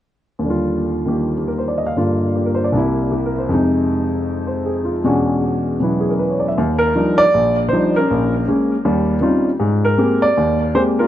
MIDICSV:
0, 0, Header, 1, 2, 480
1, 0, Start_track
1, 0, Key_signature, -3, "major"
1, 0, Tempo, 382166
1, 563, Time_signature, 4, 2, 24, 8
1, 13909, End_track
2, 0, Start_track
2, 0, Title_t, "Grand piano"
2, 0, Program_c, 0, 0
2, 489, Note_on_c, 0, 39, 39
2, 540, Note_on_c, 0, 50, 32
2, 581, Note_on_c, 0, 55, 34
2, 627, Note_on_c, 0, 65, 42
2, 1324, Note_on_c, 0, 51, 35
2, 1347, Note_on_c, 0, 58, 32
2, 1362, Note_on_c, 0, 67, 39
2, 1715, Note_off_c, 0, 67, 0
2, 1733, Note_on_c, 0, 67, 33
2, 1855, Note_on_c, 0, 70, 38
2, 1905, Note_off_c, 0, 67, 0
2, 1989, Note_on_c, 0, 72, 38
2, 2043, Note_off_c, 0, 70, 0
2, 2109, Note_on_c, 0, 74, 37
2, 2221, Note_off_c, 0, 72, 0
2, 2234, Note_on_c, 0, 75, 38
2, 2325, Note_off_c, 0, 74, 0
2, 2343, Note_on_c, 0, 77, 46
2, 2397, Note_off_c, 0, 75, 0
2, 2444, Note_off_c, 0, 50, 0
2, 2458, Note_off_c, 0, 58, 0
2, 2462, Note_off_c, 0, 65, 0
2, 2463, Note_off_c, 0, 39, 0
2, 2463, Note_on_c, 0, 43, 37
2, 2463, Note_on_c, 0, 50, 35
2, 2477, Note_on_c, 0, 58, 35
2, 2479, Note_off_c, 0, 51, 0
2, 2480, Note_on_c, 0, 65, 42
2, 2509, Note_off_c, 0, 55, 0
2, 2527, Note_off_c, 0, 77, 0
2, 2959, Note_on_c, 0, 67, 33
2, 3088, Note_on_c, 0, 70, 37
2, 3185, Note_off_c, 0, 67, 0
2, 3198, Note_on_c, 0, 72, 42
2, 3292, Note_off_c, 0, 70, 0
2, 3319, Note_on_c, 0, 74, 42
2, 3356, Note_off_c, 0, 72, 0
2, 3420, Note_on_c, 0, 36, 45
2, 3436, Note_on_c, 0, 48, 40
2, 3437, Note_off_c, 0, 43, 0
2, 3437, Note_off_c, 0, 50, 0
2, 3444, Note_off_c, 0, 58, 0
2, 3446, Note_off_c, 0, 65, 0
2, 3469, Note_on_c, 0, 58, 38
2, 3484, Note_on_c, 0, 64, 50
2, 3493, Note_off_c, 0, 74, 0
2, 3914, Note_on_c, 0, 67, 37
2, 4091, Note_on_c, 0, 70, 37
2, 4212, Note_off_c, 0, 67, 0
2, 4250, Note_on_c, 0, 72, 38
2, 4336, Note_off_c, 0, 70, 0
2, 4379, Note_off_c, 0, 48, 0
2, 4381, Note_on_c, 0, 41, 47
2, 4393, Note_off_c, 0, 36, 0
2, 4398, Note_on_c, 0, 48, 40
2, 4417, Note_off_c, 0, 58, 0
2, 4425, Note_off_c, 0, 64, 0
2, 4425, Note_on_c, 0, 56, 41
2, 4443, Note_on_c, 0, 63, 48
2, 4496, Note_off_c, 0, 72, 0
2, 5614, Note_on_c, 0, 72, 36
2, 5851, Note_on_c, 0, 68, 37
2, 5942, Note_off_c, 0, 72, 0
2, 6087, Note_on_c, 0, 65, 38
2, 6214, Note_off_c, 0, 68, 0
2, 6305, Note_off_c, 0, 41, 0
2, 6313, Note_off_c, 0, 48, 0
2, 6317, Note_off_c, 0, 56, 0
2, 6331, Note_on_c, 0, 40, 47
2, 6332, Note_on_c, 0, 47, 42
2, 6336, Note_off_c, 0, 63, 0
2, 6336, Note_on_c, 0, 56, 42
2, 6343, Note_on_c, 0, 61, 44
2, 6346, Note_on_c, 0, 62, 42
2, 6350, Note_on_c, 0, 66, 52
2, 6418, Note_off_c, 0, 65, 0
2, 7265, Note_off_c, 0, 47, 0
2, 7284, Note_on_c, 0, 47, 34
2, 7290, Note_on_c, 0, 54, 30
2, 7299, Note_off_c, 0, 61, 0
2, 7307, Note_on_c, 0, 59, 34
2, 7317, Note_on_c, 0, 61, 32
2, 7326, Note_on_c, 0, 64, 37
2, 7540, Note_on_c, 0, 68, 35
2, 7662, Note_on_c, 0, 70, 36
2, 7687, Note_off_c, 0, 68, 0
2, 7776, Note_on_c, 0, 71, 37
2, 7826, Note_off_c, 0, 70, 0
2, 7916, Note_on_c, 0, 73, 38
2, 7995, Note_off_c, 0, 71, 0
2, 8035, Note_on_c, 0, 74, 41
2, 8110, Note_off_c, 0, 73, 0
2, 8141, Note_on_c, 0, 76, 44
2, 8178, Note_off_c, 0, 74, 0
2, 8258, Note_off_c, 0, 47, 0
2, 8261, Note_off_c, 0, 54, 0
2, 8261, Note_on_c, 0, 39, 58
2, 8264, Note_off_c, 0, 40, 0
2, 8266, Note_off_c, 0, 56, 0
2, 8269, Note_off_c, 0, 59, 0
2, 8272, Note_off_c, 0, 62, 0
2, 8273, Note_off_c, 0, 66, 0
2, 8275, Note_off_c, 0, 61, 0
2, 8279, Note_off_c, 0, 64, 0
2, 8308, Note_off_c, 0, 76, 0
2, 8521, Note_on_c, 0, 70, 85
2, 8677, Note_off_c, 0, 39, 0
2, 8735, Note_on_c, 0, 53, 42
2, 8738, Note_on_c, 0, 55, 38
2, 8743, Note_on_c, 0, 62, 39
2, 8746, Note_on_c, 0, 63, 47
2, 9016, Note_on_c, 0, 74, 101
2, 9042, Note_off_c, 0, 70, 0
2, 9067, Note_off_c, 0, 53, 0
2, 9068, Note_off_c, 0, 55, 0
2, 9071, Note_off_c, 0, 62, 0
2, 9072, Note_off_c, 0, 63, 0
2, 9222, Note_on_c, 0, 34, 55
2, 9480, Note_off_c, 0, 74, 0
2, 9636, Note_off_c, 0, 34, 0
2, 9653, Note_on_c, 0, 72, 70
2, 9705, Note_on_c, 0, 53, 45
2, 9708, Note_on_c, 0, 55, 40
2, 9714, Note_on_c, 0, 63, 49
2, 9719, Note_on_c, 0, 62, 40
2, 9996, Note_off_c, 0, 72, 0
2, 10001, Note_on_c, 0, 70, 76
2, 10016, Note_on_c, 0, 61, 46
2, 10029, Note_off_c, 0, 53, 0
2, 10031, Note_off_c, 0, 55, 0
2, 10033, Note_off_c, 0, 63, 0
2, 10036, Note_off_c, 0, 62, 0
2, 10181, Note_on_c, 0, 34, 57
2, 10445, Note_off_c, 0, 70, 0
2, 10588, Note_off_c, 0, 34, 0
2, 10636, Note_off_c, 0, 61, 0
2, 10651, Note_on_c, 0, 56, 44
2, 10655, Note_on_c, 0, 61, 51
2, 10656, Note_on_c, 0, 58, 41
2, 10975, Note_off_c, 0, 56, 0
2, 10977, Note_off_c, 0, 58, 0
2, 10977, Note_off_c, 0, 61, 0
2, 11115, Note_on_c, 0, 39, 61
2, 11116, Note_on_c, 0, 55, 61
2, 11528, Note_off_c, 0, 39, 0
2, 11529, Note_off_c, 0, 55, 0
2, 11569, Note_on_c, 0, 55, 46
2, 11574, Note_on_c, 0, 60, 42
2, 11581, Note_on_c, 0, 61, 41
2, 11584, Note_on_c, 0, 63, 42
2, 11586, Note_on_c, 0, 65, 50
2, 11910, Note_off_c, 0, 55, 0
2, 11912, Note_off_c, 0, 60, 0
2, 11915, Note_off_c, 0, 61, 0
2, 11917, Note_off_c, 0, 63, 0
2, 11918, Note_off_c, 0, 65, 0
2, 12053, Note_on_c, 0, 44, 60
2, 12366, Note_on_c, 0, 70, 76
2, 12477, Note_off_c, 0, 44, 0
2, 12531, Note_on_c, 0, 56, 51
2, 12537, Note_on_c, 0, 58, 44
2, 12542, Note_on_c, 0, 60, 47
2, 12548, Note_on_c, 0, 67, 51
2, 12819, Note_off_c, 0, 70, 0
2, 12839, Note_on_c, 0, 74, 87
2, 12869, Note_off_c, 0, 56, 0
2, 12872, Note_off_c, 0, 58, 0
2, 12875, Note_off_c, 0, 60, 0
2, 12878, Note_off_c, 0, 67, 0
2, 13029, Note_on_c, 0, 39, 60
2, 13295, Note_off_c, 0, 74, 0
2, 13444, Note_off_c, 0, 39, 0
2, 13495, Note_on_c, 0, 56, 46
2, 13497, Note_on_c, 0, 58, 40
2, 13500, Note_on_c, 0, 67, 55
2, 13501, Note_on_c, 0, 72, 79
2, 13502, Note_on_c, 0, 60, 43
2, 13573, Note_off_c, 0, 72, 0
2, 13805, Note_on_c, 0, 70, 66
2, 13816, Note_on_c, 0, 65, 50
2, 13833, Note_off_c, 0, 56, 0
2, 13834, Note_off_c, 0, 58, 0
2, 13835, Note_off_c, 0, 67, 0
2, 13836, Note_off_c, 0, 60, 0
2, 13909, Note_off_c, 0, 65, 0
2, 13909, Note_off_c, 0, 70, 0
2, 13909, End_track
0, 0, End_of_file